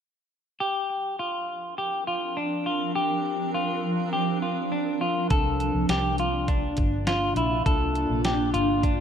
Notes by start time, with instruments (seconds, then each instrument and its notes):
0.59 ambient pad F3 C4 D4 A#4, clean electric guitar G4
1.19 clean electric guitar F4
1.78 clean electric guitar G4
2.07 clean electric guitar F4
2.37 clean electric guitar D4
2.66 clean electric guitar F4
2.95 clean electric guitar G4
3.54 clean electric guitar F4
4.13 clean electric guitar G4
4.42 clean electric guitar F4
4.72 clean electric guitar D4
5.01 clean electric guitar F4
5.30 fingered electric bass C2, ambient pad C3 A#3 D4 F4, clean electric guitar A4, kick, closed hi-hat
5.60 closed hi-hat
5.74 fingered electric bass C2
5.89 fingered electric bass C2, clean electric guitar G4, snare, closed hi-hat
6.18 clean electric guitar F4, closed hi-hat
6.48 clean electric guitar D4, kick, closed hi-hat
6.77 fingered electric bass G1, kick, closed hi-hat
7.07 clean electric guitar F4, snare, closed hi-hat
7.36 fingered electric bass A#1, clean electric guitar E4, closed hi-hat
7.66 fingered electric bass C2, clean electric guitar A4, kick, closed hi-hat
7.95 closed hi-hat
8.09 fingered electric bass A#1
8.24 clean electric guitar G4, snare, closed hi-hat
8.54 fingered electric bass G1, clean electric guitar F4, closed hi-hat
8.83 clean electric guitar D4, kick, closed hi-hat